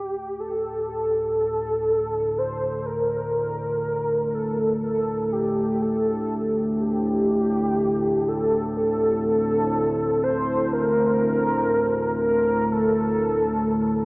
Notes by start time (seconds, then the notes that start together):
Already playing: D2 A2 E4 G4
0.20 D5
0.40 A4
0.66 A5
0.90 A4
2.38 C5
2.86 A#4
4.34 A4
4.83 A4
5.32 G4
5.82 A4
6.80 G4
7.67 C5
8.28 A4
8.77 A4
10.23 C5
10.73 A#4
12.22 A#4
12.72 A4